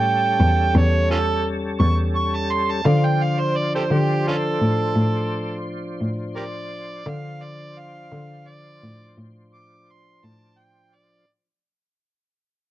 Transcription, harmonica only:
Already playing: G5
0.77 C#5
1.11 C#4 F4 A4
1.80 C#6
2.16 C#6
2.35 A5
2.52 C6
2.71 A5
2.87 F5
3.05 G5
3.23 F5
3.40 C5
3.56 D5
3.75 G4 A4 C5
3.93 G4
4.28 C#4 F4 A4
6.36 G4 A#4 D5
7.08 F5
7.43 D5
7.78 F5
8.47 D5
9.54 D6
9.91 C6
10.25 A5
10.58 G5
10.95 D5

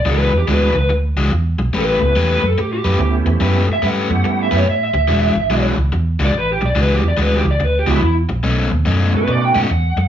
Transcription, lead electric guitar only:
0.11 B4
0.38 G4
0.52 B4
0.79 B4
1.78 B4
2.34 B4
2.46 A4
2.60 G4
2.73 G4
3.73 E5
3.87 F#5
4.43 E5
4.57 C#5
4.70 E5
4.84 E5
6.25 D5
6.38 B4
6.53 G4
6.65 D5
6.81 B4
6.94 G4
7.08 D5
7.22 B4
7.37 G4
7.51 D5
7.64 B4
7.79 G4
7.93 E4
9.17 B4
9.31 D5
9.45 G5
9.59 F#5

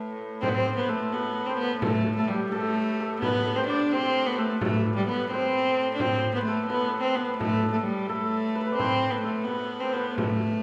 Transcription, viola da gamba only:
Already playing: A3
0.41 C4
0.49 B3
0.54 C4
0.76 B3
0.89 A3
1.12 B3
1.46 C4
1.58 B3
1.80 A3
2.16 A3
2.27 G3
2.51 A3
3.21 B3
3.56 C4
3.67 D4
3.92 C4
4.26 B3
4.38 A3
4.61 A3
4.96 G3
5.09 B3
5.31 C4
5.94 D4
6.01 C4
6.34 B3
6.45 A3
6.66 B3
7.00 C4
7.15 B3
7.37 A3
7.71 A3
7.83 G3
8.07 A3
8.77 C4
9.10 B3
9.21 A3
9.44 B3
9.80 C4
9.92 B3
10.14 A3

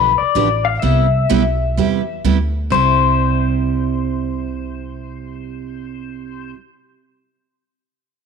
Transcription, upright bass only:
Already playing: B1
0.21 muted upright bass stroke
0.35 A1
0.83 C2
1.31 B1
1.77 E2
2.24 D2
2.72 C2

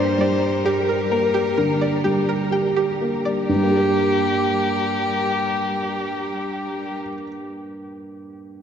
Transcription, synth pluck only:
0.00 D5
0.21 D5
0.66 G4
0.89 A#4
1.12 A#4
1.34 G4
1.58 A#4
1.81 D5
2.04 G4
2.29 A#4
2.52 G5
2.76 G4
3.25 D5

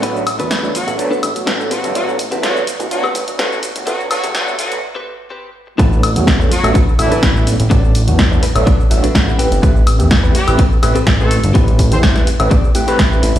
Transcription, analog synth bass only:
0.03 A1
0.40 E2
0.75 A1
0.88 A1
1.23 A1
1.36 A1
1.47 A1
1.84 G1
1.95 A1
2.31 E2
2.79 A1
3.15 A1
3.28 A1
3.39 A1
3.76 G1
3.88 A1
4.24 E2
4.59 A1
4.72 A1
5.79 A1
6.16 E2
6.64 A1
6.99 A1
7.12 A1
7.23 A1
7.60 A1
7.71 A1
8.08 E2
8.43 A1
8.56 A1
8.91 A1
9.04 A1
9.15 A1
9.52 G1
9.63 A1
10.00 E2
10.48 A1
10.83 A1
10.96 A1
11.07 A1
11.44 G1
11.55 A1
11.92 E2
12.27 A1
12.40 A1
13.23 A1
13.36 G1

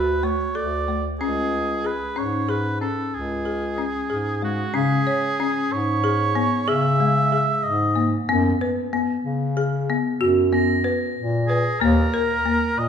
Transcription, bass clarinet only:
Already playing: D2
0.56 D2
1.20 C#2
2.16 G#2
3.14 C#2
4.10 G#2
4.75 C#3
5.71 G#2
6.68 C#3
7.63 G#2
8.28 F#2
9.24 C#3
10.20 F#2
11.17 A#2
11.81 D#2
12.78 A#2

